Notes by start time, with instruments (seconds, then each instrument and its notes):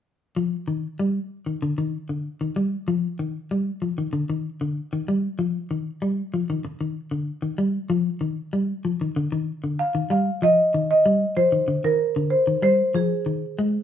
0.36 clean electric guitar F3
0.68 clean electric guitar D#3
0.99 clean electric guitar G3
1.46 clean electric guitar D#3
1.62 clean electric guitar D3
1.78 clean electric guitar D#3
2.09 clean electric guitar D3
2.41 clean electric guitar D#3
2.56 clean electric guitar G3
2.88 clean electric guitar F3
3.19 clean electric guitar D#3
3.51 clean electric guitar G3
3.82 clean electric guitar F3
3.98 clean electric guitar D#3
4.13 clean electric guitar D3
4.30 clean electric guitar D#3
4.61 clean electric guitar D3
4.93 clean electric guitar D#3
5.08 clean electric guitar G3
5.39 clean electric guitar F3
5.71 clean electric guitar D#3
6.02 clean electric guitar G3
6.34 clean electric guitar F3
6.50 clean electric guitar D#3
6.65 muted clean electric guitar stroke
6.81 clean electric guitar D#3
7.11 clean electric guitar D3
7.42 clean electric guitar D#3
7.58 clean electric guitar G3
7.90 clean electric guitar F3
8.21 clean electric guitar D#3
8.53 clean electric guitar G3
8.85 clean electric guitar F3
9.01 clean electric guitar D#3
9.16 clean electric guitar D3
9.32 clean electric guitar D#3
9.64 clean electric guitar D3
9.79 marimba F5
9.95 clean electric guitar D#3
10.10 clean electric guitar G3, marimba F5
10.42 clean electric guitar F3, marimba D#5
10.74 clean electric guitar D#3
10.91 marimba D#5
11.06 clean electric guitar G3
11.37 clean electric guitar F3, marimba C5
11.52 clean electric guitar D#3
11.68 clean electric guitar D3
11.84 clean electric guitar D#3, marimba A#4
12.16 clean electric guitar D3
12.30 marimba C5
12.47 clean electric guitar D#3
12.62 clean electric guitar G3, marimba C5
12.94 clean electric guitar F3, marimba G#4
13.26 clean electric guitar D#3
13.59 clean electric guitar G#3